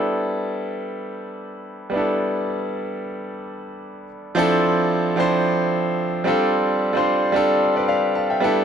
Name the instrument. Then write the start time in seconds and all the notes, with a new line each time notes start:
grand piano
Already playing: G3 B3 D4 E4 A4 G5
1.90 G3 B3 D4
1.95 E4 A4
4.35 F3 C4 D4 E4 A4
5.16 F3 C4 D4 E4 C5
6.24 G3 C4 D4 F4 A4
6.93 G3 C4 D4 F4 C5
7.32 G3 C4 D4 F4 A4
7.76 B4 D5
7.88 D5 F5
8.15 F5 A5
8.30 E5 G5
8.40 G3 B3 D4 E4 A4